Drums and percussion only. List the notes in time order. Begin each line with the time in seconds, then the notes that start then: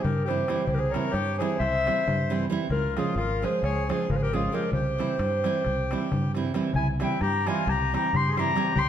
0.05 darbuka dum
0.28 darbuka tek
0.38 darbuka tek
0.48 darbuka tek
0.57 darbuka tek
0.67 darbuka dum
0.81 darbuka tek
0.94 darbuka tek
1.14 darbuka tek
1.41 darbuka tek
1.61 darbuka tek, darbuka dum
1.75 darbuka tek
1.87 darbuka tek
2.07 darbuka dum
2.32 darbuka tek
2.42 darbuka tek
2.61 darbuka tek
2.70 darbuka dum
2.83 darbuka tek
2.97 darbuka tek
3.18 darbuka tek
3.30 darbuka tek
3.43 darbuka tek
3.64 darbuka tek, darbuka dum
3.77 darbuka tek
3.90 darbuka tek
4.10 darbuka dum
4.34 darbuka tek
4.44 darbuka tek
4.54 darbuka tek
4.63 darbuka tek
4.73 darbuka dum
4.86 darbuka tek
5.00 darbuka tek
5.10 darbuka tek
5.19 darbuka tek
5.32 darbuka tek
5.44 darbuka tek
5.54 darbuka tek
5.64 darbuka tek, darbuka dum
5.77 darbuka tek
5.91 darbuka tek
6.01 darbuka tek
6.12 darbuka dum
6.34 darbuka tek
6.45 darbuka tek
6.54 darbuka tek
6.65 darbuka tek
6.74 darbuka dum
6.87 darbuka tek
7.00 darbuka tek
7.10 darbuka tek
7.21 darbuka tek
7.46 darbuka tek
7.57 darbuka tek
7.68 darbuka tek, darbuka dum
7.81 darbuka tek
7.94 darbuka tek
8.14 darbuka dum
8.26 darbuka tek
8.37 darbuka tek
8.57 darbuka tek
8.76 darbuka dum